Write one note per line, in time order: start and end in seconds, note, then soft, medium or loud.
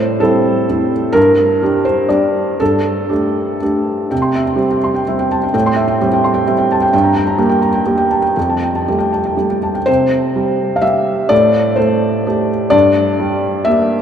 0.00 0.20 A2 medium
0.00 0.20 C5 medium
0.20 0.65 G3 soft
0.20 0.65 C4 soft
0.20 0.66 E4 medium
0.20 0.92 A4 medium
0.69 1.12 G3 soft
0.69 1.13 C4 soft
0.69 1.12 E4 soft
1.13 1.60 G2 medium
1.13 1.84 A#4 loud
1.62 2.06 G3 soft
1.62 2.06 D4 soft
1.62 2.06 G4 soft
1.85 2.09 C5 medium
2.09 2.56 G3 soft
2.09 2.56 D4 soft
2.09 2.56 G4 soft
2.09 2.59 D5 medium
2.60 3.10 G2 soft
2.60 3.11 A4 medium
3.10 3.57 A3 soft
3.10 3.57 D4 soft
3.10 3.61 G4 soft
3.62 4.08 A3 soft
3.62 4.08 D4 soft
3.62 4.08 G4 soft
4.11 4.58 C3 medium
4.11 4.30 G5 soft
4.22 4.42 C6 soft
4.35 4.55 E5 soft
4.46 4.66 G5 soft
4.56 5.01 G3 soft
4.56 5.02 C4 soft
4.56 4.77 G4 soft
4.71 4.90 G5 soft
4.84 5.03 C6 soft
4.95 5.14 G5 soft
5.08 5.51 G3 soft
5.08 5.51 C4 soft
5.08 5.27 E5 soft
5.19 5.38 G5 soft
5.32 5.43 A5 soft
5.43 5.53 G5 soft
5.54 5.99 A2 medium
5.54 5.73 G5 medium
5.66 5.85 C6 medium
5.76 5.96 E5 medium
5.88 6.07 G5 medium
6.01 6.44 G3 soft
6.01 6.44 C4 soft
6.01 6.20 G4 medium
6.13 6.31 G5 medium
6.24 6.43 C6 medium
6.34 6.53 G5 medium
6.47 6.89 G3 soft
6.47 6.89 C4 soft
6.47 6.65 E5 soft
6.58 6.77 G5 medium
6.72 6.82 A5 medium
6.82 6.92 G5 medium
6.93 7.38 G2 medium
6.93 7.11 G5 medium
7.04 7.22 A#5 medium
7.16 7.34 G5 medium
7.27 7.46 A#5 medium
7.38 7.82 G3 soft
7.38 7.82 A#3 soft
7.38 7.57 G4 soft
7.49 7.69 G5 medium
7.62 7.81 A#5 soft
7.74 7.93 G5 medium
7.86 8.33 G3 soft
7.86 8.32 A#3 soft
7.86 8.06 G4 soft
7.98 8.18 G5 soft
8.11 8.24 A5 soft
8.22 8.35 G5 soft
8.37 8.87 F2 soft
8.37 8.57 G5 soft
8.50 8.70 A5 soft
8.62 8.83 G5 soft
8.76 8.96 A5 soft
8.88 9.35 G3 soft
8.88 9.35 A3 soft
8.88 9.08 G4 soft
8.99 9.20 G5 soft
9.12 9.33 A5 soft
9.25 9.45 G5 soft
9.37 9.83 G3 soft
9.37 9.83 A3 soft
9.37 9.57 G4 soft
9.50 9.70 G5 soft
9.63 9.76 A5 soft
9.75 9.87 G5 soft
9.86 11.27 C3 medium
9.86 10.76 C5 medium
10.36 10.81 G3 soft
10.76 10.84 F5 medium
10.82 11.26 G3 soft
10.82 11.26 G4 soft
10.82 11.30 E5 medium
11.29 12.69 A2 medium
11.29 11.77 D5 medium
11.76 12.25 A3 medium
11.76 12.49 C5 medium
12.27 12.70 A3 soft
12.27 12.70 G4 soft
12.70 14.02 G2 medium
12.70 13.66 D5 loud
13.20 13.95 G3 medium
13.65 14.02 A#3 soft
13.65 14.02 G4 soft
13.65 14.02 E5 medium